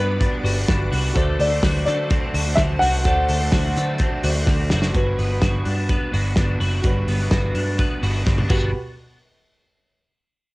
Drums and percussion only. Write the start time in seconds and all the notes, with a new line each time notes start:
0.21 kick, hi-hat pedal, open hi-hat
0.45 hi-hat pedal, open hi-hat
0.68 kick, snare, hi-hat pedal, open hi-hat
0.92 hi-hat pedal, open hi-hat
1.16 kick, hi-hat pedal, open hi-hat
1.39 hi-hat pedal, open hi-hat
1.63 kick, snare, hi-hat pedal, open hi-hat
1.86 hi-hat pedal, open hi-hat
2.10 kick, hi-hat pedal, open hi-hat
2.34 hi-hat pedal, open hi-hat
2.57 kick, snare
2.81 hi-hat pedal, open hi-hat
3.04 kick, hi-hat pedal, open hi-hat
3.28 hi-hat pedal, open hi-hat
3.52 kick, snare
3.75 hi-hat pedal, open hi-hat
3.98 kick, hi-hat pedal, open hi-hat
4.23 hi-hat pedal, open hi-hat
4.46 kick, snare
4.70 snare
4.82 snare
4.94 kick, closed hi-hat
5.19 open hi-hat
5.42 kick, snare, closed hi-hat
5.65 open hi-hat
5.89 kick, closed hi-hat
6.14 open hi-hat
6.36 kick, snare, closed hi-hat
6.61 open hi-hat
6.83 kick, closed hi-hat
7.08 open hi-hat
7.31 kick, snare, closed hi-hat
7.55 open hi-hat
7.79 kick, closed hi-hat
8.03 open hi-hat
8.27 kick, snare
8.38 high tom
8.50 kick, crash